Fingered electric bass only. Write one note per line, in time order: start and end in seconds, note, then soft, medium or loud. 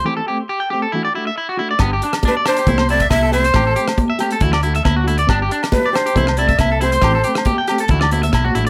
1.80 1.99 G1 medium
2.67 3.06 C2 medium
3.11 3.50 C2 medium
3.55 3.74 A1 medium
4.41 4.81 D2 medium
4.85 5.24 D2 medium
5.29 5.48 G1 medium
6.15 6.55 C2 medium
6.59 6.99 C2 loud
7.02 7.22 A1 medium
7.89 8.29 D2 medium
8.33 8.53 B1 medium
8.55 8.70 A1 medium